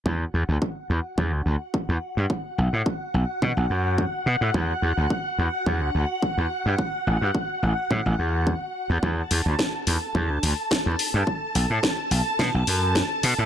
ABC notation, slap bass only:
X:1
M:4/4
L:1/16
Q:"Swing 16ths" 1/4=107
K:Bphr
V:1 name="Slap bass" clef=bass
E,, z E,, D,, z2 E,, z E,, D,, D,, z2 E,, z G,, | z2 B,,, A,, z2 B,,, z B,, B,,, F,,2 z2 B,, A,, | E,, z E,, D,, z2 E,, z E,, D,, D,, z2 E,, z G,, | z2 A,,, G,, z2 A,,, z A,, A,,, E,,2 z3 E,, |
E,, z E,, D,, z2 E,, z E,, D,, D,, z2 E,, z G,, | z2 B,,, A,, z2 B,,, z B,, B,,, F,,2 z2 B,, A,, |]